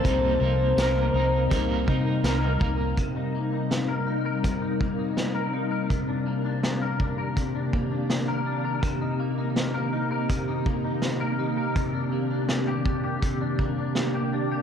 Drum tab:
HH |x-x-x-x-|x-x-x-x-|x-x-x-x-|x-x-x-x-|
TB |--x---x-|--------|--------|--------|
SD |--o---o-|--o---o-|--o---o-|--o---o-|
BD |o---oo-o|o---oo--|o--ooo--|o---oo--|

HH |x-x-x-x-|
TB |--------|
SD |--o---o-|
BD |o--ooo--|